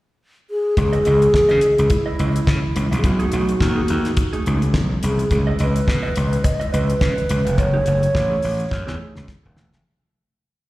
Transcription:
0.50 alto flute G#4
0.77 slap bass C#2, alto flute G#4, muted clean electric guitar stroke, kick, closed hi-hat
0.93 clean electric guitar E4 B4 D#5, closed hi-hat
1.05 slap bass C#2, clean electric guitar E4 B4 D#5, closed hi-hat
1.21 muted clean electric guitar stroke, closed hi-hat
1.33 muted clean electric guitar stroke, kick, snare
1.49 slap bass C#3, clean electric guitar E4 B4 D#5, closed hi-hat
1.61 muted clean electric guitar stroke, closed hi-hat
1.78 slap bass C#2, muted clean electric guitar stroke, closed hi-hat
1.90 alto flute E4, muted clean electric guitar stroke, kick, closed hi-hat
2.06 clean electric guitar E4 B4 D#5
2.18 slap bass C#2, clean electric guitar E4 B4 D#5, closed hi-hat
2.34 muted clean electric guitar stroke, closed hi-hat
2.47 slap bass C#3, muted clean electric guitar stroke, kick, snare
2.62 muted clean electric guitar stroke
2.76 slap bass C#2, closed hi-hat
2.91 slap bass A#1, muted clean electric guitar stroke, closed hi-hat
2.99 alto flute G#4
3.04 slap bass B1, alto flute F#4, muted clean electric guitar stroke, kick, closed hi-hat
3.19 clean electric guitar A3 D#4 G#4, closed hi-hat
3.32 slap bass B1, clean electric guitar A3 D#4 G#4, closed hi-hat
3.47 muted clean electric guitar stroke, closed hi-hat
3.60 slap bass D#2, muted clean electric guitar stroke, kick, snare
3.76 clean electric guitar A3 D#4 G#4
3.88 slap bass D#2, muted clean electric guitar stroke, closed hi-hat
4.04 muted clean electric guitar stroke, snare, closed hi-hat
4.17 muted clean electric guitar stroke, kick, closed hi-hat
4.33 clean electric guitar A3 D#4 G#4, closed hi-hat
4.45 slap bass C#2, clean electric guitar A3 D#4 G#4, closed hi-hat
4.62 muted clean electric guitar stroke, closed hi-hat
4.74 slap bass B1, muted clean electric guitar stroke, kick, snare
4.89 muted clean electric guitar stroke
5.03 slap bass C2, alto flute G#4, closed hi-hat
5.18 muted clean electric guitar stroke, closed hi-hat
5.31 slap bass C#2, alto flute G#4, muted clean electric guitar stroke, kick, closed hi-hat
5.47 clean electric guitar E4 B4 D#5
5.59 slap bass C#2, clean electric guitar E4 B4 D#5, alto flute B4, closed hi-hat
5.75 muted clean electric guitar stroke, closed hi-hat
5.88 slap bass B2, muted clean electric guitar stroke, kick, snare
6.03 clean electric guitar E4 B4 D#5
6.15 slap bass C#2, muted clean electric guitar stroke, closed hi-hat
6.31 muted clean electric guitar stroke, closed hi-hat
6.43 alto flute D#5, muted clean electric guitar stroke, kick, closed hi-hat
6.60 clean electric guitar E4 B4 D#5, closed hi-hat
6.72 slap bass C#2, clean electric guitar E4 B4 D#5, alto flute B4, closed hi-hat
6.88 muted clean electric guitar stroke, closed hi-hat
7.00 slap bass C#3, muted clean electric guitar stroke, kick, snare
7.16 muted clean electric guitar stroke, closed hi-hat
7.29 slap bass C#2, closed hi-hat
7.45 slap bass F1, muted clean electric guitar stroke, closed hi-hat
7.58 slap bass F#1, alto flute C#5, muted clean electric guitar stroke, kick, closed hi-hat
7.74 clean electric guitar A3 E4 G#4
7.86 slap bass F#1, clean electric guitar A3 E4 G#4, closed hi-hat
8.02 muted clean electric guitar stroke, closed hi-hat
8.14 slap bass A1, muted clean electric guitar stroke, kick, snare
8.30 clean electric guitar A3 E4 G#4
8.42 slap bass A1, muted clean electric guitar stroke, open hi-hat
8.59 muted clean electric guitar stroke, closed hi-hat
8.71 slap bass F#2, muted clean electric guitar stroke, kick, snare
8.87 slap bass E2, clean electric guitar A3 E4 G#4, snare
8.99 clean electric guitar A3 E4 G#4
9.15 slap bass C#2, muted clean electric guitar stroke, snare
9.28 muted clean electric guitar stroke, kick, snare
9.43 slap bass D#1, muted clean electric guitar stroke
9.56 slap bass E1, clean electric guitar A3 E4 G#4, snare
9.72 slap bass F1, muted clean electric guitar stroke, snare

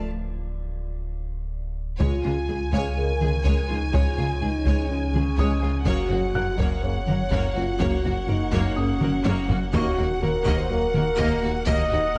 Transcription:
Already playing: sub bass D1, felt piano D5
1.99 double bass section C#2, cello section C#2, sub bass C#2, analog synth bass C#2, trombone section C#3 G#3, synth drone F3 C#4 G#4 C#5, viola section G#3, french horn section F4, violin section C#5 G#5, taiko
2.23 double bass section C#2, cello section C#2, analog synth bass C#3, viola section G#3, violin section F4
2.48 cello section C#2, double bass section C#2, analog synth bass C#2, viola section G#3, violin section G#4
2.72 double bass section C#2, analog synth bass C#2, cello section C#2, viola section G#3, french horn section G#4, violin section C#5, felt piano F5, taiko
2.97 analog synth bass C#2, trombone section C#3 G#3, french horn section A#4
3.21 double bass section C#2, cello section C#2, analog synth bass C#3, viola section G#3, violin section G#4, taiko mid
3.44 double bass section C#2, cello section C#2, analog synth bass C#2, viola section G#3, violin section C#5, taiko
3.68 double bass section C#2, cello section C#2, analog synth bass C#2, viola section G#3, french horn section D#4, violin section F4
3.93 double bass section C#2, cello section C#2, analog synth bass C#2, trombone section C#3 G#3, viola section G#3, french horn section F4, felt piano G#4 G#5, violin section C#5, taiko
4.17 double bass section C#2, cello section C#2, analog synth bass C#3, viola section G#3, violin section F4
4.41 cello section C#2, double bass section C#2, analog synth bass C#2, viola section G#3, french horn section D#4, violin section G#4
4.66 cello section C#2, double bass section C#2, analog synth bass C#2, viola section G#3, violin section C#5, taiko
4.89 analog synth bass C#2, trombone section C#3 G#3, french horn section C#4
5.14 double bass section C#2, cello section C#2, analog synth bass C#3, viola section G#3, violin section G#4, taiko mid
5.37 double bass section C#2, cello section C#2, analog synth bass C#2, viola section G#3, violin section C#5, felt piano D#5 D#6, taiko
5.62 double bass section C#2, cello section C#2, analog synth bass C#2, viola section G#3, violin section F4
5.86 double bass section F#1, sub bass F#1, cello section F#2, analog synth bass F#2, trombone section C#3 A#3, synth drone A#3 C#4 F#4 C#5, viola section A#3, french horn section F#4, violin section C#5 F#5, taiko
6.10 double bass section F#1, cello section F#2, analog synth bass F#3, viola section A#3, violin section F#4
6.34 double bass section F#1, cello section F#2, analog synth bass F#2, viola section A#3, violin section A#4, felt piano F#5 F#6
6.59 double bass section F#1, analog synth bass F#2, cello section F#2, viola section A#3, french horn section A#4, violin section C#5, taiko
6.83 analog synth bass F#2, trombone section C#3 A#3, french horn section C#5
7.07 double bass section F#1, cello section F#2, analog synth bass F#3, viola section A#3, violin section A#4, taiko mid
7.31 double bass section F#1, cello section F#2, analog synth bass F#2, viola section A#3, violin section C#5, taiko
7.55 double bass section F#1, cello section F#2, analog synth bass F#2, viola section A#3, french horn section F4, violin section F#4
7.79 double bass section F#1, cello section F#2, analog synth bass F#2, trombone section C#3 A#3, viola section A#3, french horn section F#4, violin section C#5, taiko
8.04 double bass section F#1, cello section F#2, analog synth bass F#3, viola section A#3, violin section F#4
8.28 double bass section F#1, cello section F#2, analog synth bass F#2, viola section A#3, french horn section D#4, violin section A#4
8.52 double bass section F#1, cello section F#2, analog synth bass F#2, viola section A#3, violin section C#5, taiko
8.76 analog synth bass F#2, trombone section C#3 A#3, french horn section C#4, felt piano D#6
9.01 double bass section F#1, cello section F#2, analog synth bass F#3, viola section A#3, violin section A#4, taiko mid
9.24 double bass section F#1, cello section F#2, analog synth bass F#2, viola section A#3, violin section C#5, taiko high
9.49 double bass section F#1, cello section F#2, analog synth bass F#2, viola section A#3, violin section F#4, taiko low
9.73 sub bass D#1, cello section D#2, double bass section D#2, analog synth bass D#2, trombone section F#3 A#3, synth drone A#3 D#4 F#4 A#4, viola section A#3, french horn section F#4, felt piano C#5 C#6, violin section D#5 F#5, taiko
9.97 double bass section D#2, cello section D#2, analog synth bass D#3, viola section A#3, violin section F#4
10.22 double bass section D#2, cello section D#2, analog synth bass D#2, viola section A#3, french horn section A#4, violin section A#4
10.46 cello section D#2, double bass section D#2, analog synth bass D#2, viola section A#3, violin section D#5, taiko
10.59 french horn section C5
10.70 analog synth bass D#2, trombone section F#3 A#3, french horn section A#4
10.94 cello section D#2, double bass section D#2, analog synth bass D#3, viola section A#3, violin section A#4, taiko mid
11.18 double bass section D#2, cello section D#2, analog synth bass D#2, viola section A#3, violin section D#5, taiko
11.43 cello section D#2, double bass section D#2, analog synth bass D#2, viola section A#3, violin section F#4
11.66 double bass section D#2, cello section D#2, analog synth bass D#2, trombone section F#3 A#3, viola section A#3, violin section D#5, french horn section D#5, taiko
11.90 cello section D#2, double bass section D#2, analog synth bass D#3, viola section A#3, violin section F#4
12.15 violin section A#4

